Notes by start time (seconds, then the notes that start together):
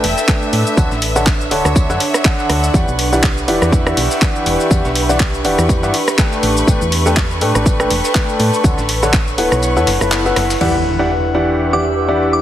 Already playing: D4 A4 B4 E5 G5 E6
0.04 E1, open hi-hat, tambourine
0.18 snare, cabasa
0.28 A3 D4 A4 B4 G5, kick, snare, clap, tambourine, cabasa
0.42 cabasa
0.53 A2, open hi-hat, tambourine
0.67 cabasa
0.77 D2 D3 D4 A4 C#5 F#5, kick, tambourine, cabasa
0.91 A1, snare, cabasa
0.98 C#5
1.02 open hi-hat, tambourine
1.16 D3 D4 A4 C#5 F#5, snare, cabasa
1.27 kick, snare, clap, tambourine, cabasa
1.41 cabasa
1.51 D1 D3 D4 A4 C#5 F#5, open hi-hat, tambourine
1.65 D2 F#5, cross-stick, cabasa
1.76 kick, tambourine, cabasa
1.90 F#2 D3 D4 A4 C#5 F#5, snare, cabasa
2.00 open hi-hat, tambourine
2.14 cross-stick, snare, cabasa
2.25 D3 D4 A4 C#5 F#5, kick, snare, clap, tambourine, cabasa
2.39 snare, cabasa
2.50 D2, cross-stick, open hi-hat, tambourine
2.64 cabasa
2.74 E2 E3 E4 G4 B4 D5 F#5 C#6, kick, tambourine, cabasa
2.88 B1 G4, cabasa
2.99 open hi-hat, tambourine
3.13 E3 E4 G4 D5 F#5, snare, cabasa
3.18 E5
3.23 kick, snare, clap, tambourine, cabasa
3.38 cabasa
3.48 E1 E3 E4 G4 D5 F#5, open hi-hat, tambourine
3.62 E2, cross-stick, cabasa
3.72 kick, tambourine, cabasa
3.87 E3 E4 G4 D5 F#5, cross-stick, cabasa
3.97 B1, open hi-hat, tambourine
4.11 snare, cabasa
4.22 E3 E4 G4 D5 F#5, kick, snare, clap, tambourine, cabasa
4.36 cabasa
4.46 E1, open hi-hat, tambourine
4.60 cabasa
4.71 E2 E3 E4 G4 D5 F#5, kick, tambourine, cabasa
4.85 B1, snare, cabasa
4.95 open hi-hat, tambourine
5.09 E3 E4 G4 D5 F#5, snare, cabasa
5.20 kick, snare, clap, tambourine, cabasa
5.34 cabasa
5.45 E1 E3 E4 G4 D5 F#5, open hi-hat, tambourine
5.58 E2, cross-stick, cabasa
5.69 kick, tambourine, cabasa
5.83 G2 E3 E4 G4 D5 F#5, snare, cabasa
5.94 open hi-hat, tambourine
6.08 cross-stick, snare, cabasa
6.18 A3 D4 A4 B4 G5, kick, snare, clap, tambourine, cabasa
6.32 snare, cabasa
6.43 A1, open hi-hat, tambourine
6.57 cabasa
6.64 A1 A3 D4 A4 B4 G5, kick, tambourine, cabasa
6.81 E2, cabasa
6.92 open hi-hat, tambourine
7.06 A3 D4 A4 B4 G5, snare, cabasa
7.17 kick, snare, clap, tambourine, cabasa
7.25 B4
7.31 cabasa
7.41 A2 A3 D4 A4 B4 G5, open hi-hat, tambourine
7.55 A1, cross-stick, cabasa
7.66 kick, tambourine, cabasa
7.80 A3 D4 A4 B4 G5, cross-stick, cabasa
7.90 E1, open hi-hat, tambourine
8.04 snare, cabasa
8.15 A3 D4 A4 B4 G5, kick, snare, clap, tambourine, cabasa
8.29 cabasa
8.40 A2, open hi-hat, tambourine
8.54 cabasa
8.64 D2 D3 D4 A4 C#5 F#5, kick, tambourine, cabasa
8.78 A1, snare, cabasa
8.89 open hi-hat, tambourine
9.03 D3 D4 A4 C#5 F#5, snare, cabasa
9.09 C#5 F#5
9.13 kick, snare, clap, tambourine, cabasa
9.27 cabasa
9.38 D1 B3 E4 A4 B4 F#5, open hi-hat, tambourine
9.52 B1, cross-stick, cabasa
9.63 E4, tambourine, cabasa
9.76 E2 B3 E4 A4 B4 F#5, snare, cabasa
9.87 F#1, snare, open hi-hat, tambourine
9.99 F#1 B3 E4 A4 B4 B5, cross-stick, cabasa
10.12 snare, clap, tambourine, cabasa
10.26 B3 E4 A4 B4 F#5, snare, cabasa
10.36 F#1, cross-stick, snare, open hi-hat, tambourine
10.50 snare, open hi-hat, tambourine, cabasa
10.61 E2 E3 D4 E4 G4 B4 D5 F#5 C#6, crash, impact
10.99 E3 E4 G4 D5 F#5
11.07 E5
11.35 E3 E4 G4 D5 F#5
11.73 E3 E4 G4 D5 F#5 D6
12.08 E3 E4 G4 D5 F#5
12.33 D6